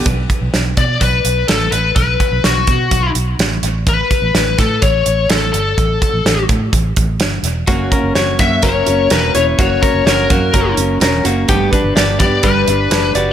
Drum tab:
HH |xxxxxxxx|xxxxxxxx|xxxxxxxx|xxxxxxxx|
SD |--o---o-|--o---o-|--oo--o-|--o---o-|
BD |oo-oo---|oo-oo---|oo-oo---|oo-ooo--|

HH |xxxxxxxx|xxxxxxxx|xxxxxxxx|
SD |--oo--o-|--o---o-|--oo--o-|
BD |oo-oo---|oo-oo---|oo-oo---|